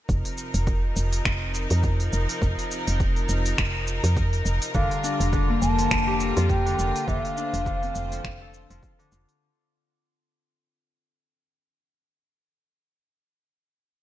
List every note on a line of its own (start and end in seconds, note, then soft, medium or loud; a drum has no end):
0.09 0.23 F1 loud
0.09 4.71 C3 medium
0.09 4.71 F3 medium
0.09 4.71 D#4 medium
0.09 7.04 A#4 medium
0.09 kick medium
0.09 cabasa soft
0.25 open hi-hat soft
0.38 cabasa medium
0.54 0.93 F1 medium
0.54 open hi-hat medium
0.54 cabasa soft
0.67 kick loud
0.67 cabasa soft
0.96 1.21 F1 medium
0.96 cabasa medium
1.13 open hi-hat medium
1.13 cabasa soft
1.25 1.67 F1 medium
1.25 finger snap medium
1.25 kick loud
1.25 cabasa soft
1.54 cabasa medium
1.70 2.09 F2 medium
1.70 open hi-hat medium
1.70 cabasa soft
1.83 kick medium
1.83 cabasa soft
2.00 open hi-hat soft
2.13 2.26 F1 medium
2.13 cabasa medium
2.29 open hi-hat medium
2.29 cabasa soft
2.42 2.56 F1 loud
2.42 kick loud
2.42 cabasa soft
2.59 open hi-hat soft
2.71 cabasa medium
2.87 3.26 F1 medium
2.87 open hi-hat medium
2.87 cabasa soft
3.00 kick loud
3.00 cabasa soft
3.16 open hi-hat soft
3.29 3.54 F1 medium
3.29 cabasa medium
3.46 open hi-hat medium
3.46 cabasa soft
3.58 4.00 F1 medium
3.58 finger snap medium
3.58 kick loud
3.58 cabasa soft
3.87 cabasa medium
4.04 4.42 F2 medium
4.04 open hi-hat soft
4.04 cabasa soft
4.17 kick loud
4.17 cabasa soft
4.33 open hi-hat soft
4.45 4.59 F1 medium
4.45 cabasa medium
4.62 open hi-hat medium
4.62 cabasa soft
4.74 4.88 F1 medium
4.74 9.36 D3 medium
4.74 5.31 D3 medium
4.74 7.05 G3 medium
4.74 9.36 F4 medium
4.74 5.29 F5 loud
4.74 kick loud
4.74 cabasa soft
4.91 open hi-hat soft
5.04 7.37 D4 medium
5.04 cabasa medium
5.20 5.59 F1 medium
5.20 open hi-hat medium
5.20 cabasa soft
5.32 6.64 D3 loud
5.32 kick loud
5.32 cabasa soft
5.49 8.47 A#3 medium
5.62 5.87 F1 medium
5.62 6.16 A5 loud
5.62 cabasa medium
5.78 6.35 F3 medium
5.78 open hi-hat soft
5.78 cabasa soft
5.91 6.32 F1 medium
5.91 finger snap medium
5.91 kick loud
5.91 cabasa soft
6.07 8.42 G4 medium
6.20 cabasa medium
6.36 6.75 F2 loud
6.36 6.69 F3 medium
6.36 open hi-hat medium
6.36 cabasa soft
6.49 7.09 G5 loud
6.49 kick loud
6.49 cabasa soft
6.65 7.06 D3 medium
6.65 open hi-hat soft
6.79 6.92 F1 medium
6.79 9.11 F4 medium
6.79 cabasa medium
6.96 open hi-hat medium
6.96 cabasa soft
7.08 7.21 F1 loud
7.08 7.65 D3 medium
7.08 9.38 A3 medium
7.08 9.38 C5 medium
7.08 7.26 E5 loud
7.08 kick loud
7.08 cabasa soft
7.25 8.82 F5 loud
7.25 open hi-hat soft
7.37 10.17 D4 medium
7.37 cabasa medium
7.53 7.92 F1 medium
7.53 open hi-hat medium
7.53 cabasa soft
7.66 8.97 D3 loud
7.66 kick loud
7.66 cabasa soft
7.83 10.83 C4 medium
7.83 open hi-hat soft
7.95 8.20 F1 medium
7.95 cabasa medium
8.12 8.69 F3 medium
8.12 open hi-hat medium
8.12 cabasa soft
8.24 8.66 F1 medium
8.24 finger snap medium
8.24 kick loud
8.24 cabasa soft
8.41 10.61 A4 medium
8.54 cabasa medium
8.70 8.81 F1 medium
8.70 9.02 F3 loud
8.70 open hi-hat soft
8.70 cabasa soft
8.83 kick loud
8.83 cabasa soft
8.99 9.46 D3 loud
8.99 open hi-hat soft
9.12 9.26 F1 medium
9.12 11.64 F4 medium
9.12 cabasa medium
9.29 open hi-hat soft
9.29 cabasa soft